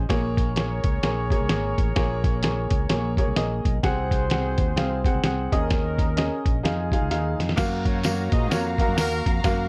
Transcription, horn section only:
0.10 3.62 G#4 medium
0.10 3.62 A#4 medium
0.10 3.62 C#5 medium
3.83 5.21 F#4 medium
3.83 5.21 G#4 medium
3.83 5.21 C5 medium
5.52 6.44 C#4 medium
5.52 6.44 D#4 medium
5.52 6.44 A#4 medium
6.65 7.38 D#4 medium
6.65 7.38 F4 medium
6.65 7.38 G#4 medium
7.85 8.30 F#4 medium
7.85 8.30 A#4 medium
7.85 8.30 C#5 medium
8.32 8.47 G#4 medium
8.32 8.47 C5 medium
8.32 8.47 D#5 medium
8.51 8.73 F#4 medium
8.51 8.73 A#4 medium
8.51 8.73 C#5 medium
8.80 8.95 A#3 medium
8.80 8.95 F#4 medium
8.80 8.95 A#4 medium
8.98 9.33 A#3 loud
8.98 9.33 F#4 loud
8.98 9.34 A#4 loud

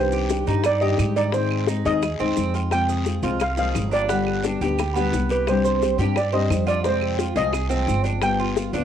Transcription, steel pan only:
0.00 0.67 C5 medium
0.66 0.83 D5 medium
0.81 1.17 D#5 medium
1.16 1.24 D5 medium
1.34 1.82 C5 medium
1.86 2.51 D#5 loud
2.72 3.20 G5 loud
3.42 3.58 F5 loud
3.59 3.94 F5 loud
3.93 4.58 D5 medium
5.31 5.47 B4 medium
5.49 6.19 C5 medium
6.17 6.34 D5 medium
6.34 6.66 D#5 medium
6.68 6.86 D5 medium
6.86 7.33 C5 medium
7.37 8.01 D#5 medium
8.23 8.71 G5 loud

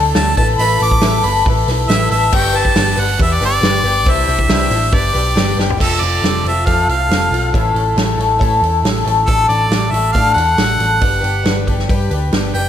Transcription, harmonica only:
0.15 0.36 A5 medium
0.37 0.47 A5 medium
0.58 0.79 B5 loud
0.82 1.27 D6 loud
1.25 1.47 B5 medium
1.88 2.09 E5 loud
2.11 2.36 E5 medium
2.35 2.58 G5 loud
2.56 3.02 A5 loud
3.00 3.21 F#5 loud
3.22 3.35 E5 medium
3.34 3.43 D5 medium
3.45 4.12 D5 loud
4.10 4.52 E5 loud
4.53 4.96 E5 medium
4.94 5.59 D5 medium
5.81 6.03 A4 medium
6.01 6.44 D5 medium
6.47 6.65 E5 medium
6.66 6.88 F5 medium
6.90 7.53 F5 medium
9.26 9.48 A4 medium
9.49 9.93 D5 medium
9.91 10.12 E5 medium
10.13 10.33 F5 medium
10.34 11.62 F#5 medium
12.54 12.69 G5 medium

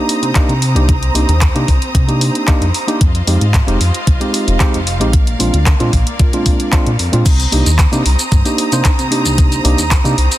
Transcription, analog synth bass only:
0.22 0.32 C3 medium
0.49 0.77 C3 medium
0.75 1.10 C2 loud
1.15 1.25 C2 medium
1.28 1.49 D#2 medium
1.55 1.65 C3 medium
1.68 1.79 C2 medium
1.95 2.30 C3 medium
2.61 2.71 F2 medium
3.01 3.22 F2 loud
3.27 3.38 F2 loud
3.41 3.61 G#2 loud
3.68 3.78 F1 loud
3.80 3.91 F2 medium
4.07 4.18 C2 medium
4.47 4.57 F1 medium
4.74 5.02 F1 medium
5.00 5.35 A#1 loud
5.40 5.50 A#1 loud
5.54 5.74 D2 loud
5.80 5.90 A#2 medium
5.93 6.04 A#1 medium
6.20 6.55 A#2 medium
6.87 6.96 A#2 medium
6.99 7.10 F2 medium
7.13 7.23 A#2 medium
7.26 7.46 C2 loud
7.53 7.63 C2 loud
7.66 7.86 D#2 loud
7.93 8.02 C3 loud
8.05 8.16 C2 medium
8.32 8.43 G2 medium
8.72 8.82 C3 medium
8.99 9.27 C3 medium
9.25 9.60 C2 loud
9.65 9.75 C2 loud
9.79 9.99 D#2 loud
10.05 10.15 C3 loud
10.18 10.28 C2 medium

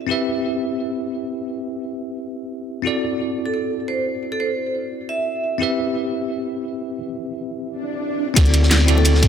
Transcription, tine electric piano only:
0.07 2.81 C4 medium
0.07 2.82 E4 medium
0.07 2.83 G4 medium
0.07 2.83 B4 medium
0.11 2.84 E5 medium
2.82 5.57 C4 medium
2.82 5.58 E4 medium
2.82 5.59 F#4 medium
2.82 5.59 A4 medium
2.87 5.60 D5 medium
5.58 6.97 C4 medium
5.58 6.98 E4 medium
5.58 6.99 G4 medium
5.58 6.99 B4 medium
5.63 7.00 E5 medium
8.34 8.85 C4 medium
8.34 8.86 E4 medium
8.34 8.86 F#4 medium
8.34 8.87 A4 medium
8.39 8.87 D5 medium
8.86 9.28 C4 medium
8.86 9.28 E4 medium
8.86 9.28 F#4 medium
8.86 9.28 A4 medium
8.91 9.28 D5 loud

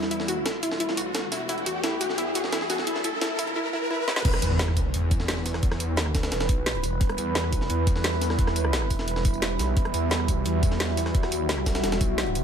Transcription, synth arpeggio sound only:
0.11 0.18 E4 medium
0.28 0.35 F#4 medium
0.63 0.70 E4 medium
0.80 0.87 E4 medium
0.97 1.04 F#4 medium
1.32 1.39 E4 medium
1.49 1.56 E4 medium
1.66 1.73 F#4 medium
1.84 1.91 E4 medium
2.01 2.08 F#4 medium
2.18 2.25 E4 medium
2.35 2.42 F#4 medium
2.52 2.59 E4 medium
2.70 2.77 F#4 medium
2.87 2.94 E4 medium
3.04 3.11 E4 medium
3.22 3.28 E4 medium
3.39 3.46 E4 medium
3.56 3.63 E4 medium
3.73 3.80 E4 medium
3.90 3.97 E4 medium
4.08 4.15 E4 medium

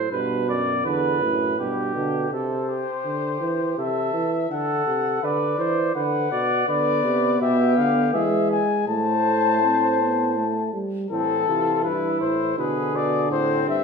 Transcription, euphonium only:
0.11 0.81 B2 medium
0.85 1.24 D3 medium
1.22 1.60 A2 medium
1.58 1.94 B2 medium
1.95 2.31 D3 medium
6.68 8.15 B3 medium
8.14 8.87 G#3 medium
8.87 9.60 A3 medium
9.62 10.01 C4 medium
10.00 10.37 B3 medium
10.36 10.72 A3 medium
10.73 11.10 G3 medium
11.10 12.59 E3 medium
12.58 13.84 D3 medium

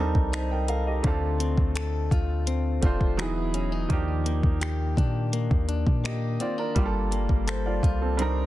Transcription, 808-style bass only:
0.00 0.14 D#2 loud
0.15 1.01 C2 loud
1.04 1.56 D2 loud
1.58 2.09 D2 medium
2.12 2.80 D2 medium
2.83 3.86 E1 loud
3.90 4.41 D#2 loud
4.44 4.95 D#2 loud
4.97 5.49 A#2 loud
5.51 5.85 D#2 loud
5.87 6.38 A#2 loud
6.76 7.27 G1 loud
7.29 7.81 G1 medium
7.83 8.46 C2 loud

